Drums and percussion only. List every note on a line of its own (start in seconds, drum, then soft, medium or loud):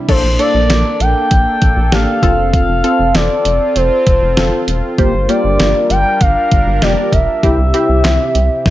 0.09 kick loud
0.09 closed hi-hat medium
0.09 crash medium
0.39 closed hi-hat medium
0.70 snare loud
0.70 closed hi-hat medium
1.00 closed hi-hat medium
1.31 kick medium
1.31 closed hi-hat medium
1.62 kick medium
1.62 closed hi-hat medium
1.92 snare loud
1.92 closed hi-hat medium
2.23 kick medium
2.23 closed hi-hat medium
2.54 kick loud
2.54 closed hi-hat medium
2.84 closed hi-hat medium
3.15 snare loud
3.15 closed hi-hat medium
3.45 closed hi-hat medium
3.76 closed hi-hat medium
4.07 kick medium
4.07 closed hi-hat medium
4.37 snare loud
4.37 closed hi-hat medium
4.68 closed hi-hat medium
4.98 kick loud
4.98 closed hi-hat medium
5.29 closed hi-hat medium
5.60 snare loud
5.60 closed hi-hat medium
5.90 closed hi-hat medium
6.21 kick medium
6.21 closed hi-hat medium
6.51 kick medium
6.51 closed hi-hat medium
6.82 snare loud
6.82 closed hi-hat medium
7.13 kick medium
7.13 closed hi-hat medium
7.43 kick loud
7.43 closed hi-hat medium
7.74 closed hi-hat medium
8.04 snare loud
8.04 clap medium
8.04 closed hi-hat medium
8.35 closed hi-hat medium
8.66 kick loud
8.66 snare medium